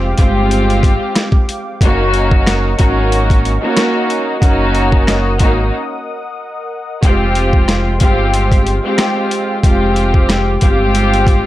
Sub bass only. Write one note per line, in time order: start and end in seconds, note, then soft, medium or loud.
0.00 0.14 F1 loud
0.19 0.97 G1 loud
1.81 2.75 F#1 loud
2.80 3.58 G#1 loud
4.42 5.42 F#1 loud
5.41 5.71 G#1 loud
7.03 8.03 F1 loud
8.01 8.80 G1 loud
9.64 10.57 F1 loud
10.62 11.41 G1 loud